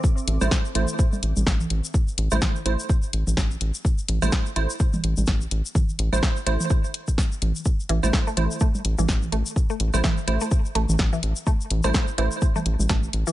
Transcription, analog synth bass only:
X:1
M:4/4
L:1/16
Q:"Swing 16ths" 1/4=126
K:Am
V:1 name="Analog synth bass" clef=bass
z2 A,,, A,,, z2 A,,, z3 A,,, A,,, A,,,2 A,,, z | z2 A,,, A,,, z2 A,,, z3 A,,, A,,, A,,,2 A,,, z | z2 A,,, A,,, z2 A,,, z3 A,,, A,,, A,,,2 A,,, z | z2 A,,, A,,, z2 A,,, z6 z A,,, z |
z2 A,,, A,,, z2 A,,, z3 A,,, A,,, A,,,2 A,,, z | z2 A,,, A,,, z2 A,,, z3 A,,, A,,, z2 A,,, z | z2 A,,, A,,, z2 A,,, z3 A,,, A,,, A,,,2 A,,, z |]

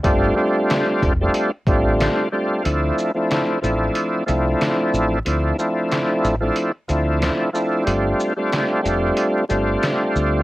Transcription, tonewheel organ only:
X:1
M:4/4
L:1/16
Q:"Swing 16ths" 1/4=92
K:Dm
V:1 name="Tonewheel organ"
[G,A,CDF]2 [G,A,CDF]4- [G,A,CDF] [G,A,CDF]2 z [G,A,CDF]4 [G,A,CDF]2 | [F,A,CDE]3 [F,A,CDE]3 [F,A,CDE]4 [F,A,CDE]6 | [F,A,CDE]2 [F,A,CDE]4- [F,A,CDE] [F,A,CDE]2 z [F,A,CDE]4 [F,A,CDE]2 | [G,A,CDF]3 [G,A,CDF]3 [G,A,CDF]4 [G,A,CDF]6 |]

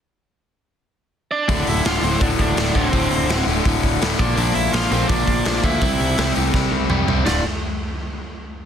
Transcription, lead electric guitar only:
X:1
M:4/4
L:1/8
Q:1/4=166
K:Dm
V:1 name="Lead electric guitar"
z6 z [Dd]- | [Dd] [Ee] [Ff] [Cc] [Dd] [Dd]2 [Cc]- | [Cc]3 z4 [Dd]- | [Dd] [Ee] [Ff] [Cc] [Dd] [Dd]2 [Ee]- |
[Ee]3 z4 z | d z6 z |]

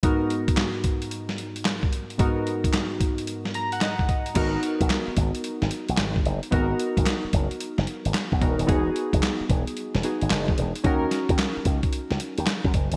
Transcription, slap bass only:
X:1
M:4/4
L:1/16
Q:"Swing 16ths" 1/4=111
K:G#m
V:1 name="Slap bass" clef=bass
z16 | z16 | G,,,2 z B,,, z2 G,,, z2 G,,, z B,,, G,,,2 F,,, z | G,,,2 z G,,, z2 F,,, z2 F,,, z G,,, z B,,, E,,, D,,, |
E,,,2 z F,,, z2 E,,, z2 E,,, z G,,, F,,,2 E,,, z | D,,2 z D,, z2 C,, z2 C,, z D,, z F,, F,,, =G,,, |]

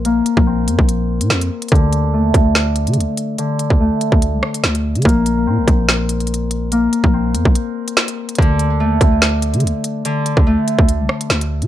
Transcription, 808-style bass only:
X:1
M:4/4
L:1/16
Q:1/4=144
K:Bb
V:1 name="808-style bass" clef=bass
B,,,2 z B,,,3 F,, B,,,4 B,, F,,2 z2 | D,,4 E,,2 D,,4- D,, D, D,, z3 | z3 D,,2 z2 D,,2 C,, z2 D,,3 D, | B,,,4 B,, B,,, B,,,8- B,,,2- |
B,,,2 z B,,,3 F,, B,,, z8 | D,,4 E,,2 D,,4- D,, D, D,, z3 | z3 D,,2 z2 D,,2 C,, z2 D,,3 D, |]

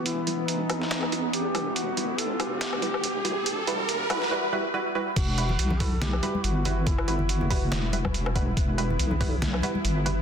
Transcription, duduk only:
X:1
M:4/4
L:1/8
Q:"Swing 16ths" 1/4=141
K:Em
V:1 name="Duduk"
E2 ^D4 G2 | F2 A G4- G- | G4 z4 | F3 A G2 F2 |
E2 F3 z3 | z8 |]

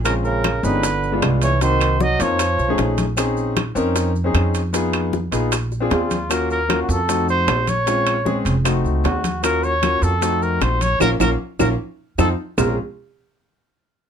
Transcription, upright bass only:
X:1
M:4/4
L:1/8
Q:1/4=153
K:Bbm
V:1 name="Upright bass" clef=bass
B,,,3 =G,,,3 C,,2- | C,,3 F,,2 _C,, B,,,2- | B,,,3 F,,3 F,,2- | F,,3 B,,,3 E,,2- |
E,,3 F,,3 B,,,2- | B,,,3 F,,,2 D,, E,,2- | E,,3 F,,3 B,,,2 | B,,, B,,, z B,,, z2 F,, z |
B,,, z6 z |]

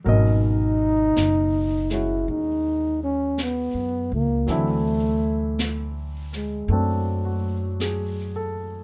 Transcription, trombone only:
X:1
M:4/4
L:1/16
Q:"Swing" 1/4=54
K:G#m
V:1 name="Trombone"
D6 E2 D2 C2 B,2 A,2 | =A,4- A, z G,2 F,6 z2 |]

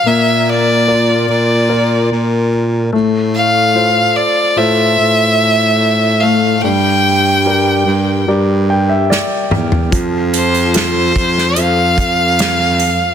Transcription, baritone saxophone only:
X:1
M:4/4
L:1/8
Q:1/4=73
K:F
V:1 name="Baritone saxophone" clef=bass
B,,3 B,,2 B,,2 A,,- | A,,2 z A,, A,,4 | G,,3 G,, G,,2 z E,, | F,,3 F,, F,,4 |]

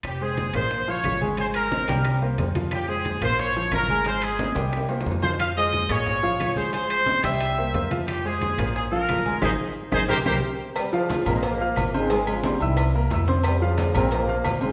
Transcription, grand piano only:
X:1
M:4/4
L:1/8
Q:1/4=179
K:Fm
V:1 name="Grand piano"
z [A,Ac]2 [B,Bc]2 [F,Ff]2 [A,Aa] | [A,Aa]2 [Cce] [G,Gg]2 [B,Bc] [B,Bc] [F,Ff]- | [F,Ff] [A,Ac]2 [B,Bc]2 [F,Ff]2 [A,Aa] | [A,Aa]2 [Cce] [G,Gg]2 [B,Bc] [B,Bc] [F,Ff]- |
[F,Ff] [A,Ac]2 [B,AB]2 [F,Ff]2 [A,Aa] | [A,Aa]2 [Cce] [G,Gg]2 [B,Bc] [B,Bc] [F,Ff]- | [F,Ff] [A,Ac]2 [B,Bc]2 [F,Ff]2 [A,Aa] | [EAc] z2 [EAc] [GBc] [GBc] z2 |
z [F,Ff]2 [B,Bb]2 [Fff']2 [Ccc'] | [A,Aa]2 [Ccc'] [=E=e=e']2 [B,Bb] [Eee'] [Ccc']- | [Ccc'] [F,Ff]2 [B,Bb]2 [Fff']2 [Ccc'] |]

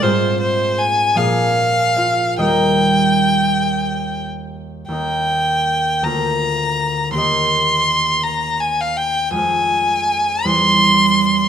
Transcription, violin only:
X:1
M:6/8
L:1/16
Q:3/8=53
K:Eb
V:1 name="Violin"
c2 c2 a2 f6 | g8- g z3 | g6 b6 | c'6 b2 a f g2 |
a6 c'6 |]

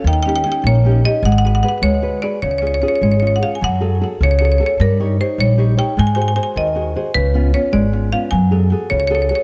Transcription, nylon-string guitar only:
X:1
M:6/8
L:1/8
Q:3/8=101
K:F#m
V:1 name="Nylon-string guitar"
^D, [C^D=G] [CDG] ^A, [CDG] [CDG] | G, [FGB] [FGB] G, [FGB] [FGB] | C, [C^EG] [CEG] G, [CEG] [CEG] | F, [FGA] [FGA] C, [FGA] [FGA] |
=G, [^D=Gc] [DGc] G, [DGc] [DGc] | G, [FG^B] [FGB] ^D, [FGB] [FGB] | C, [B,C^E] [B,CE] G, [B,CE] [B,CE] | F, [FGA] [FGA] C, [FGA] [FGA] |]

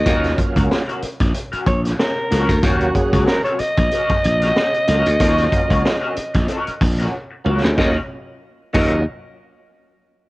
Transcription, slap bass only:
X:1
M:4/4
L:1/16
Q:"Swing 16ths" 1/4=93
K:Ebm
V:1 name="Slap bass" clef=bass
E,,2 z D,, z3 B,,, z2 B,,,2 z2 D,, =D,, | E,,2 z D,, z3 B,,, z2 B,,,2 z2 D,, =D,, | E,,2 z D,, z3 B,,, z2 B,,,2 z2 D,, =D,, | E,, z4 z E,,2 z8 |]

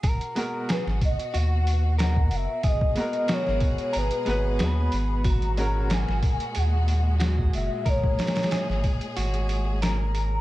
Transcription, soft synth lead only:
X:1
M:4/4
L:1/8
Q:"Swing 16ths" 1/4=92
K:G#m
V:1 name="Soft synth lead"
z2 B d f2 f e | d2 c2 B2 b2 | a2 g2 f2 z e | c3 z3 a2 |]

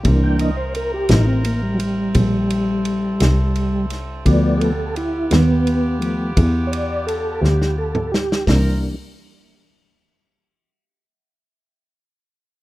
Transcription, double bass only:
X:1
M:12/8
L:1/8
Q:3/8=57
K:Gdor
V:1 name="Double bass" clef=bass
C,,3 A,,,3 B,,,3 C,,3 | D,,3 _E,,3 =E,,3 D,,3 | C,, z8 z3 |]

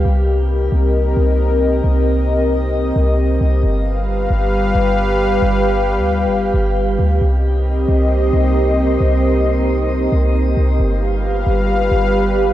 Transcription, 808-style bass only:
X:1
M:4/4
L:1/16
Q:1/4=134
K:Cm
V:1 name="808-style bass" clef=bass
C,,6 C,,4 C,,6 | C,,8- C,,2 C,,4 C,,2 | G,,,6 G,,,4 G,,,6 | G,,,4- G,,, D,,2- D,,/2 G,,,2- G,,,/2 G,,,4 D,,2 |
C,,6 C,,4 C,,6 | C,,8- C,,2 C,,4 C,,2 | G,,,6 G,,,4 G,,,6 |]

